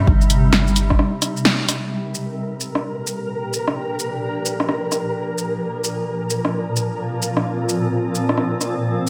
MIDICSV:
0, 0, Header, 1, 5, 480
1, 0, Start_track
1, 0, Key_signature, -2, "minor"
1, 0, Tempo, 461538
1, 76, Time_signature, 4, 2, 24, 8
1, 9457, End_track
2, 0, Start_track
2, 0, Title_t, "Synth texture"
2, 0, Program_c, 0, 99
2, 1981, Note_on_c, 0, 70, 73
2, 9457, Note_off_c, 0, 70, 0
2, 9457, End_track
3, 0, Start_track
3, 0, Title_t, "Ambient pad"
3, 0, Program_c, 1, 92
3, 0, Note_on_c, 1, 48, 91
3, 0, Note_on_c, 1, 55, 84
3, 0, Note_on_c, 1, 63, 92
3, 0, Note_on_c, 1, 67, 83
3, 1990, Note_off_c, 1, 67, 0
3, 1990, Note_on_c, 1, 46, 72
3, 1997, Note_off_c, 1, 55, 0
3, 1998, Note_off_c, 1, 48, 0
3, 1999, Note_off_c, 1, 63, 0
3, 2222, Note_on_c, 1, 53, 87
3, 2234, Note_on_c, 1, 67, 78
3, 2453, Note_on_c, 1, 62, 74
3, 5843, Note_on_c, 1, 65, 78
3, 5999, Note_off_c, 1, 67, 0
3, 6480, Note_on_c, 1, 60, 80
3, 6601, Note_off_c, 1, 62, 0
3, 9457, Note_off_c, 1, 46, 0
3, 9457, Note_off_c, 1, 53, 0
3, 9457, Note_off_c, 1, 60, 0
3, 9457, Note_off_c, 1, 65, 0
3, 9457, End_track
4, 0, Start_track
4, 0, Title_t, "808-style bass"
4, 0, Program_c, 2, 38
4, 76, Note_on_c, 2, 31, 101
4, 1036, Note_off_c, 2, 31, 0
4, 9457, End_track
5, 0, Start_track
5, 0, Title_t, "Drums"
5, 76, Note_on_c, 9, 36, 112
5, 180, Note_off_c, 9, 36, 0
5, 222, Note_on_c, 9, 82, 30
5, 311, Note_off_c, 9, 82, 0
5, 311, Note_on_c, 9, 46, 73
5, 311, Note_on_c, 9, 82, 57
5, 415, Note_off_c, 9, 46, 0
5, 415, Note_off_c, 9, 82, 0
5, 547, Note_on_c, 9, 38, 101
5, 651, Note_off_c, 9, 38, 0
5, 702, Note_on_c, 9, 82, 32
5, 791, Note_off_c, 9, 82, 0
5, 791, Note_on_c, 9, 46, 65
5, 791, Note_on_c, 9, 82, 55
5, 895, Note_off_c, 9, 46, 0
5, 895, Note_off_c, 9, 82, 0
5, 939, Note_on_c, 9, 37, 61
5, 946, Note_on_c, 9, 36, 58
5, 1030, Note_off_c, 9, 37, 0
5, 1030, Note_on_c, 9, 37, 59
5, 1050, Note_off_c, 9, 36, 0
5, 1134, Note_off_c, 9, 37, 0
5, 1268, Note_on_c, 9, 37, 37
5, 1268, Note_on_c, 9, 46, 74
5, 1268, Note_on_c, 9, 82, 57
5, 1372, Note_off_c, 9, 37, 0
5, 1372, Note_off_c, 9, 46, 0
5, 1372, Note_off_c, 9, 82, 0
5, 1423, Note_on_c, 9, 82, 32
5, 1509, Note_on_c, 9, 38, 96
5, 1527, Note_off_c, 9, 82, 0
5, 1613, Note_off_c, 9, 38, 0
5, 1753, Note_on_c, 9, 37, 39
5, 1753, Note_on_c, 9, 46, 68
5, 1753, Note_on_c, 9, 82, 57
5, 1857, Note_off_c, 9, 37, 0
5, 1857, Note_off_c, 9, 46, 0
5, 1857, Note_off_c, 9, 82, 0
5, 2231, Note_on_c, 9, 82, 50
5, 2335, Note_off_c, 9, 82, 0
5, 2709, Note_on_c, 9, 82, 50
5, 2813, Note_off_c, 9, 82, 0
5, 2862, Note_on_c, 9, 37, 56
5, 2966, Note_off_c, 9, 37, 0
5, 3190, Note_on_c, 9, 82, 52
5, 3294, Note_off_c, 9, 82, 0
5, 3675, Note_on_c, 9, 82, 52
5, 3779, Note_off_c, 9, 82, 0
5, 3823, Note_on_c, 9, 37, 56
5, 3927, Note_off_c, 9, 37, 0
5, 4154, Note_on_c, 9, 82, 48
5, 4258, Note_off_c, 9, 82, 0
5, 4634, Note_on_c, 9, 82, 51
5, 4738, Note_off_c, 9, 82, 0
5, 4783, Note_on_c, 9, 37, 53
5, 4874, Note_off_c, 9, 37, 0
5, 4874, Note_on_c, 9, 37, 49
5, 4978, Note_off_c, 9, 37, 0
5, 5114, Note_on_c, 9, 37, 33
5, 5114, Note_on_c, 9, 82, 51
5, 5218, Note_off_c, 9, 37, 0
5, 5218, Note_off_c, 9, 82, 0
5, 5595, Note_on_c, 9, 82, 52
5, 5699, Note_off_c, 9, 82, 0
5, 6074, Note_on_c, 9, 82, 49
5, 6178, Note_off_c, 9, 82, 0
5, 6552, Note_on_c, 9, 82, 51
5, 6656, Note_off_c, 9, 82, 0
5, 6705, Note_on_c, 9, 37, 51
5, 6809, Note_off_c, 9, 37, 0
5, 7034, Note_on_c, 9, 82, 51
5, 7138, Note_off_c, 9, 82, 0
5, 7511, Note_on_c, 9, 82, 51
5, 7615, Note_off_c, 9, 82, 0
5, 7662, Note_on_c, 9, 37, 53
5, 7766, Note_off_c, 9, 37, 0
5, 7996, Note_on_c, 9, 82, 48
5, 8100, Note_off_c, 9, 82, 0
5, 8474, Note_on_c, 9, 82, 49
5, 8578, Note_off_c, 9, 82, 0
5, 8624, Note_on_c, 9, 37, 49
5, 8710, Note_off_c, 9, 37, 0
5, 8710, Note_on_c, 9, 37, 46
5, 8814, Note_off_c, 9, 37, 0
5, 8952, Note_on_c, 9, 37, 30
5, 8952, Note_on_c, 9, 82, 51
5, 9056, Note_off_c, 9, 37, 0
5, 9056, Note_off_c, 9, 82, 0
5, 9457, End_track
0, 0, End_of_file